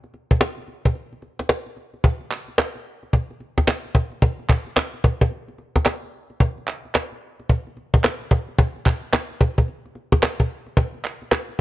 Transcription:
0.04 cajon slap soft
0.14 cajon slap soft
0.31 cajon bass medium
0.41 cajon slap loud
0.58 cajon slap soft
0.68 cajon slap soft
0.85 cajon bass medium
0.95 cajon slap soft
1.13 cajon slap soft
1.22 cajon slap soft
1.39 cajon slap medium
1.49 cajon slap loud
1.66 cajon slap soft
1.77 cajon slap soft
1.93 cajon slap soft
2.04 cajon bass loud
2.21 cajon slap soft
2.31 cajon slap soft
2.31 clap medium
2.48 cajon slap soft
2.58 cajon slap loud
2.58 clap medium
2.75 cajon slap soft
3.03 cajon slap soft
3.13 cajon bass medium
3.30 cajon slap soft
3.40 cajon slap soft
3.58 cajon bass medium
3.58 cajon slap medium
3.68 cajon slap loud
3.68 clap medium
3.85 cajon slap soft
3.95 cajon bass loud
4.12 cajon slap soft
4.22 cajon bass loud
4.39 cajon slap soft
4.49 cajon bass loud
4.49 clap medium
4.67 cajon slap soft
4.76 cajon slap loud
4.76 clap medium
4.94 cajon slap soft
5.04 cajon bass loud
5.21 cajon bass loud
5.31 cajon slap soft
5.48 cajon slap soft
5.58 cajon slap soft
5.76 cajon bass medium
5.76 cajon slap medium
5.86 cajon slap loud
5.86 clap medium
6.03 cajon slap soft
6.30 cajon slap soft
6.40 cajon bass loud
6.58 cajon slap soft
6.67 cajon slap soft
6.67 clap medium
6.85 cajon slap soft
6.95 cajon slap loud
6.95 clap medium
7.12 cajon slap soft
7.40 cajon slap soft
7.49 cajon bass medium
7.67 cajon slap soft
7.77 cajon slap soft
7.94 cajon bass loud
7.94 cajon slap medium
8.04 cajon slap loud
8.04 clap medium
8.21 cajon slap soft
8.31 cajon bass medium
8.48 cajon slap soft
8.59 cajon bass loud
8.76 cajon slap soft
8.86 cajon bass loud
8.86 clap medium
9.03 cajon slap soft
9.13 cajon slap loud
9.13 clap medium
9.31 cajon slap soft
9.41 cajon bass loud
9.58 cajon bass medium
9.68 cajon slap soft
9.86 cajon slap soft
9.95 cajon slap soft
10.12 cajon bass loud
10.12 cajon slap medium
10.23 cajon slap loud
10.23 clap medium
10.40 cajon bass medium
10.66 cajon slap soft
10.77 cajon bass loud
10.94 cajon slap soft
11.05 cajon slap soft
11.05 clap medium
11.22 cajon slap soft
11.31 cajon slap loud
11.31 clap medium
11.49 cajon slap soft

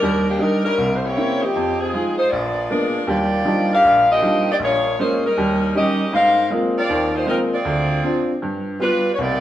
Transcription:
0.00 0.35 D#2 medium
0.00 0.26 G3 medium
0.00 0.35 G3 medium
0.00 0.25 D4 medium
0.00 0.26 D#4 medium
0.00 0.25 A#4 loud
0.29 0.42 D#3 medium
0.29 0.42 A#3 medium
0.29 0.41 D4 medium
0.29 0.42 G4 medium
0.39 0.66 G3 soft
0.39 0.64 G3 medium
0.39 0.66 D4 soft
0.39 0.66 D4 medium
0.39 0.66 D#4 medium
0.39 0.64 A#4 medium
0.65 0.92 G3 medium
0.65 0.92 C#4 medium
0.65 0.93 E4 medium
0.65 0.92 A#4 loud
0.78 1.11 C2 medium
0.96 1.04 C5 medium
1.05 1.43 A#3 medium
1.05 1.43 E4 medium
1.05 1.42 G4 medium
1.05 1.43 C#5 loud
1.16 1.43 A#3 soft
1.16 1.43 C4 soft
1.16 1.43 C#4 soft
1.16 1.43 E4 soft
1.42 1.79 F3 medium
1.42 1.79 C4 medium
1.42 1.79 D#4 medium
1.42 1.81 G4 medium
1.55 1.88 F2 medium
1.80 2.18 F3 medium
1.80 2.18 C4 medium
1.80 2.18 D#4 medium
1.80 2.18 G#4 medium
1.93 2.20 G#3 soft
1.93 2.20 D#4 soft
1.93 2.20 F4 soft
2.18 2.31 G#3 medium
2.18 2.31 D#4 medium
2.18 2.29 F4 medium
2.18 2.30 C5 medium
2.30 2.65 A#1 medium
2.30 2.94 B3 medium
2.30 2.69 F4 medium
2.30 2.94 G#4 medium
2.30 2.94 D5 medium
2.70 2.96 G#3 soft
2.70 3.05 G#3 medium
2.70 2.96 A#3 soft
2.70 2.96 B3 soft
2.70 3.05 D4 medium
2.70 2.96 D4 soft
2.70 3.05 F4 medium
2.70 3.05 A#4 medium
3.07 3.40 D#2 medium
3.07 3.41 G3 medium
3.07 3.72 A#3 medium
3.07 3.71 F4 medium
3.07 3.72 G4 medium
3.07 3.72 D5 loud
3.45 3.72 F3 soft
3.45 3.72 G3 soft
3.45 3.72 D4 soft
3.45 3.72 D#4 medium
3.73 4.08 D4 medium
3.73 4.08 G4 medium
3.73 4.07 A#4 medium
3.73 4.07 F5 loud
3.84 4.17 A#1 medium
4.12 4.49 A#3 medium
4.12 4.49 F4 medium
4.12 4.49 G4 medium
4.12 4.49 D#5 loud
4.21 4.48 F3 soft
4.21 4.48 G3 soft
4.21 4.48 D4 soft
4.21 4.48 D#4 medium
4.51 4.57 A#3 medium
4.51 4.57 F4 medium
4.51 4.56 G4 medium
4.51 4.57 D5 medium
4.59 4.93 A#1 medium
4.64 4.98 A#3 medium
4.64 4.98 F4 medium
4.64 4.98 G#4 medium
4.64 4.98 C#5 medium
4.99 5.25 G#3 medium
4.99 5.23 G#3 medium
4.99 5.25 A#3 soft
4.99 5.26 C#4 medium
4.99 5.23 C#4 medium
4.99 5.23 F4 medium
4.99 5.23 C5 medium
5.26 5.76 G3 medium
5.26 5.75 C#4 medium
5.26 5.76 D#4 medium
5.26 5.75 A#4 medium
5.37 5.70 D#2 medium
5.37 5.70 G3 medium
5.75 6.01 G3 soft
5.75 6.01 C#4 soft
5.75 6.11 C#4 medium
5.75 6.01 D#4 soft
5.75 6.11 G4 medium
5.75 6.11 A#4 medium
5.75 6.11 D#5 medium
6.13 6.46 G#2 medium
6.13 6.49 D#4 medium
6.13 6.49 A#4 medium
6.13 6.49 C5 medium
6.13 6.49 F5 loud
6.50 6.77 G#3 medium
6.50 6.77 A#3 soft
6.50 6.77 C4 soft
6.50 6.77 F4 medium
6.78 7.12 C4 medium
6.78 7.12 F4 medium
6.78 7.13 A#4 medium
6.78 7.12 D5 medium
6.89 7.22 D#2 medium
6.89 7.22 D#3 medium
7.16 7.28 A#3 medium
7.16 7.27 D#4 medium
7.16 7.28 F4 medium
7.16 7.28 C5 medium
7.26 7.39 F3 medium
7.26 7.53 G#3 soft
7.26 7.53 A#3 soft
7.26 7.53 C4 soft
7.26 7.39 C4 medium
7.26 7.39 D#4 medium
7.26 7.53 F4 soft
7.26 7.39 A#4 medium
7.54 8.33 C4 medium
7.54 8.33 F4 medium
7.54 8.33 G#4 medium
7.54 8.33 D5 medium
7.65 7.98 D2 medium
8.03 8.29 C4 soft
8.03 8.30 D4 soft
8.03 8.30 F4 medium
8.42 8.75 G2 medium
8.80 9.06 G3 soft
8.80 9.11 G3 medium
8.80 9.06 B3 soft
8.80 9.12 D4 medium
8.80 9.06 F4 soft
8.80 9.12 F4 medium
8.80 9.12 B4 medium
9.14 9.40 C2 medium
9.14 9.18 C#5 medium
9.20 9.40 A#3 medium
9.20 9.40 D#4 medium
9.20 9.40 G4 medium
9.20 9.40 D5 loud

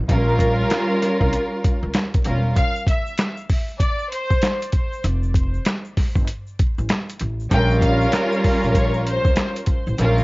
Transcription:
0.09 0.61 A#1 medium
0.09 2.12 G3 loud
0.09 2.12 C#4 medium
0.09 2.12 F4 loud
0.09 2.12 A#4 loud
0.09 kick loud
0.09 closed hi-hat medium
0.39 kick medium
0.39 closed hi-hat medium
0.70 snare loud
0.70 clap medium
0.70 closed hi-hat medium
1.02 snare soft
1.02 closed hi-hat medium
1.21 1.31 C2 medium
1.21 kick medium
1.33 closed hi-hat loud
1.64 kick loud
1.64 closed hi-hat medium
1.83 1.93 C#2 medium
1.94 snare loud
1.94 clap medium
1.94 closed hi-hat loud
2.14 kick loud
2.14 closed hi-hat medium
2.25 2.51 E1 medium
2.25 2.55 G3 medium
2.25 2.55 C#4 medium
2.25 2.55 F4 medium
2.25 2.56 A#4 medium
2.25 closed hi-hat medium
2.56 2.84 F5 loud
2.56 kick loud
2.56 closed hi-hat medium
2.56 shaker medium
2.75 shaker soft
2.87 3.35 E5 medium
2.87 kick medium
2.87 closed hi-hat medium
2.87 shaker medium
3.07 shaker soft
3.18 snare loud
3.18 clap medium
3.18 closed hi-hat loud
3.18 shaker medium
3.37 shaker medium
3.50 kick medium
3.50 open hi-hat medium
3.68 shaker soft
3.80 4.08 D5 medium
3.80 kick loud
3.80 closed hi-hat loud
3.80 shaker medium
3.99 shaker soft
4.12 4.58 C5 loud
4.12 closed hi-hat medium
4.30 kick medium
4.30 shaker medium
4.42 snare loud
4.42 clap medium
4.42 closed hi-hat loud
4.42 shaker medium
4.62 closed hi-hat medium
4.62 shaker medium
4.72 kick medium
4.72 closed hi-hat medium
4.93 shaker soft
5.04 5.56 F1 loud
5.04 closed hi-hat medium
5.04 shaker medium
5.23 shaker soft
5.34 kick medium
5.34 closed hi-hat medium
5.34 shaker medium
5.54 shaker soft
5.65 snare loud
5.65 clap medium
5.65 closed hi-hat loud
5.65 shaker medium
5.85 shaker medium
5.97 kick medium
5.97 snare soft
5.97 open hi-hat medium
6.16 6.26 G1 medium
6.16 kick medium
6.16 shaker soft
6.27 closed hi-hat loud
6.27 shaker medium
6.47 shaker soft
6.59 kick loud
6.59 closed hi-hat medium
6.78 6.88 A1 medium
6.78 shaker medium
6.89 snare loud
6.89 clap medium
6.89 closed hi-hat loud
6.89 shaker medium
7.09 closed hi-hat medium
7.09 shaker medium
7.19 7.46 A1 medium
7.19 closed hi-hat medium
7.40 shaker soft
7.51 8.03 A#1 loud
7.51 9.65 G3 loud
7.51 9.66 C#4 loud
7.51 9.66 F4 loud
7.51 9.66 A#4 loud
7.51 7.79 G5 loud
7.51 kick loud
7.51 closed hi-hat medium
7.51 shaker medium
7.70 shaker soft
7.81 8.29 F5 medium
7.81 kick medium
7.81 closed hi-hat medium
7.81 shaker medium
8.01 shaker soft
8.12 snare loud
8.12 clap medium
8.12 closed hi-hat loud
8.12 shaker medium
8.32 shaker medium
8.44 kick medium
8.44 open hi-hat medium
8.63 9.15 A#1 medium
8.63 shaker soft
8.74 9.03 C#5 medium
8.74 kick loud
8.74 closed hi-hat loud
8.74 shaker medium
8.94 shaker soft
9.06 9.53 C5 loud
9.06 closed hi-hat medium
9.25 9.35 C#2 medium
9.25 kick medium
9.25 shaker medium
9.36 snare loud
9.36 clap medium
9.36 closed hi-hat loud
9.36 shaker medium
9.56 closed hi-hat medium
9.56 shaker medium
9.66 kick medium
9.66 closed hi-hat medium
9.87 9.97 A1 medium
9.87 shaker medium
9.98 10.24 A#1 loud
9.98 10.24 G3 loud
9.98 10.24 C#4 loud
9.98 10.24 F4 loud
9.98 10.24 A#4 loud
9.98 closed hi-hat medium
9.98 shaker medium
10.18 shaker soft

